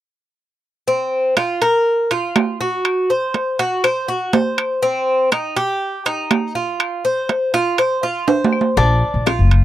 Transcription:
0.88 cuban tres C4
1.37 cuban tres F4, high timbale, low timbale, claves
1.62 cuban tres A#4, high timbale
2.11 cuban tres F4, high timbale
2.36 high timbale, low timbale, claves
2.61 cuban tres F#4
2.85 high timbale, claves
3.10 cuban tres C5
3.34 high timbale, low timbale
3.59 cuban tres F#4, high timbale
3.84 cuban tres C5, high timbale, claves
4.08 cuban tres F#4
4.33 cuban tres C5, high timbale, low timbale
4.58 high timbale, claves
4.82 cuban tres C4
5.32 cuban tres D#4, high timbale, low timbale, claves
5.56 cuban tres G4, high timbale
6.06 cuban tres D#4, high timbale
6.31 high timbale, low timbale, claves
6.55 cuban tres F4
6.80 high timbale, claves
7.05 cuban tres C5
7.29 high timbale, low timbale
7.54 cuban tres F4, high timbale
7.78 cuban tres C5, high timbale, claves
8.03 cuban tres F4
8.28 cuban tres C5, high timbale
8.44 low timbale
8.53 claves
8.61 low timbale
8.77 upright bass A#1, cuban tres D4, high bongo
9.14 upright bass A#1
9.26 cuban tres F4, high bongo, high timbale, low timbale, claves
9.39 upright bass F#1
9.51 high timbale

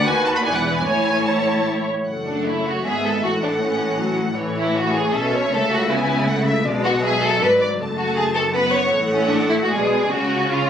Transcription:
0.06 cello section D#2, double bass section D#2, violin section F#4 B4 G#5, viola section B4
0.25 violin section A5
0.36 violin section B5
0.45 double bass section E1, cello section E2, violin section E4 D5 G#5, viola section B4
0.55 violin section F#5
0.76 violin section G#5
0.85 double bass section A1, cello section A2, violin section E4 C#5 G#5, viola section C#5
1.26 violin section E4 C#5 A5
2.06 double bass section F#1, cello section F#2, viola section A3, violin section F#5
2.26 violin section D4
2.46 violin section E4 C#5
2.67 violin section F#4
2.84 double bass section G#1, cello section G#2, viola section B3, violin section G#4 E5
3.05 violin section A4
3.22 double bass section A1, cello section A2, viola section A3, violin section F#4 F#5
3.43 violin section D4
3.61 violin section C#4
3.99 viola section F#3
4.36 double bass section A1, cello section A2, viola section E3, violin section C#5
4.58 violin section E4
4.76 violin section F#4
4.94 violin section G#4
5.13 double bass section B1, cello section B2, viola section C#4, violin section A4 E5
5.33 violin section C#5
5.51 double bass section C#2, cello section C#3, viola section A3, violin section A4 E5
5.71 violin section F#4
5.89 viola section B3, violin section E4 G#5
6.27 viola section A3, violin section F#5
6.46 violin section E5
6.64 double bass section B1, cello section B2, viola section G#3, violin section D5
6.83 violin section F#4 F#5
7.02 viola section F#3, violin section G#4 E5
7.23 violin section A4
7.40 double bass section G#1, cello section G#2, violin section B4 D5
7.61 violin section D5
7.78 double bass section F#1, cello section F#2, viola section A3, violin section A5
7.97 violin section F#4
8.16 violin section G#4
8.35 violin section A4
8.54 viola section B3, violin section B4 F#5
8.74 violin section C#5
8.92 double bass section A1, cello section A2, viola section A3, violin section F#5
9.12 violin section C#4
9.30 violin section D4
9.49 violin section E4
9.62 violin section F#4
9.70 double bass section B1, cello section B2, viola section G#3, violin section G#4 D5
10.10 double bass section C#2, cello section C#3, viola section C#4, violin section F#4 C#5
10.51 violin section F4 C#5

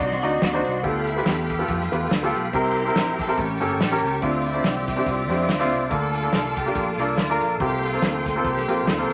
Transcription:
Already playing: grand piano D4 D#4 F#4 D5, tonewheel organ F#4 D5 D#5 C6
0.00 fingered electric bass C2, string section A3 C4 F#4
0.11 snare
0.23 fingered electric bass D2, grand piano D4 D#4 F#4 D#5, closed hi-hat
0.42 fingered electric bass D#2, string section A3 C4 F#4, snare, closed hi-hat
0.53 grand piano D4 D#4 F#4 C5
0.65 fingered electric bass C2, closed hi-hat
0.83 fingered electric bass D2, grand piano D3 B3 F4 G4 A4, string section A3 B3 F4, tonewheel organ A4 F5 G5 B5, kick, closed hi-hat
1.07 string section E4, closed hi-hat
1.16 grand piano B3 F4 G4 B4
1.26 fingered electric bass E2, string section B3 G4, snare, closed hi-hat
1.50 kick, closed hi-hat
1.59 grand piano B3 F4 G4 A4
1.68 fingered electric bass F2, string section A3 B3 F4, kick, closed hi-hat
1.81 snare
1.92 fingered electric bass E2, grand piano B3 F4 G4 B4, closed hi-hat
2.11 fingered electric bass D2, snare, closed hi-hat
2.23 grand piano B3 F4 G4 A4
2.35 fingered electric bass B1, closed hi-hat
2.53 fingered electric bass C2, grand piano C3 C4 E4 G4 A#4, string section E4 G4 A#4, tonewheel organ A#4 E5 C6, kick, closed hi-hat
2.76 closed hi-hat
2.86 grand piano C4 E4 G4 A#4
2.95 fingered electric bass A#1, string section A#4, snare, closed hi-hat
3.19 string section A4, kick, snare, closed hi-hat
3.27 grand piano C4 E4 G4 A#4
3.37 fingered electric bass A1, grand piano A2, string section A#3 C#4 G4, tonewheel organ A5 C#6, kick, closed hi-hat
3.60 fingered electric bass G1, grand piano A#3 C#4 G4 A4, closed hi-hat
3.80 fingered electric bass A1, string section A#3 C#4 G4, snare, closed hi-hat
3.91 grand piano A#3 C#4 G4 A#4
4.03 fingered electric bass C#2, closed hi-hat
4.22 fingered electric bass D2, grand piano D3 C4 D4 E4 F4, string section A3 C4 F4, tonewheel organ C5 D5 E5 D6, kick, closed hi-hat
4.45 string section E4, closed hi-hat
4.54 grand piano C4 D4 E4 F4
4.64 fingered electric bass C2, string section C4 E4 G4, snare, closed hi-hat
4.88 kick, snare, closed hi-hat
4.96 grand piano C4 D4 E4 G4
5.06 fingered electric bass C2, string section A3 C4 F4, kick, closed hi-hat
5.29 fingered electric bass F2, grand piano C4 D4 E4 G4, closed hi-hat
5.49 fingered electric bass D2, snare, closed hi-hat
5.59 grand piano C4 D4 E4 F4
5.72 fingered electric bass C2, closed hi-hat
5.90 fingered electric bass D2, grand piano D3 A#3 D4 F4 A4, string section F4 A4, tonewheel organ A4 F5 A5, kick, closed hi-hat
6.14 closed hi-hat
6.23 grand piano A#3 D4 F4 A4
6.33 fingered electric bass C2, string section A4, snare, closed hi-hat
6.57 string section G4, kick, closed hi-hat
6.66 grand piano A#3 D4 F4 G4
6.75 fingered electric bass A#1, string section A3 A#3 F4, kick, closed hi-hat
6.99 fingered electric bass C2, grand piano A#3 D4 F4 A4, closed hi-hat
7.17 fingered electric bass D2, string section A3 A#3 F4, snare, closed hi-hat
7.29 grand piano A#3 D4 F4 A#4
7.41 fingered electric bass A#1, closed hi-hat
7.60 fingered electric bass C2, grand piano C3 A#3 C4 F4 G4, string section A#3 G4, tonewheel organ C5 G5 C6, kick, closed hi-hat
7.83 string section A#3 F4, closed hi-hat
7.93 grand piano A#3 C4 F4 A4
8.02 fingered electric bass D2, snare, closed hi-hat
8.26 kick, snare, closed hi-hat
8.36 grand piano A#3 C4 F4 A4
8.45 fingered electric bass C2, string section A#3 G4, kick, closed hi-hat
8.57 snare
8.68 fingered electric bass A#1, grand piano A#3 C4 F4 G4, closed hi-hat
8.86 fingered electric bass D2, string section A#3 F4, snare, closed hi-hat
8.98 grand piano A#3 C4 F4 A4
9.10 closed hi-hat

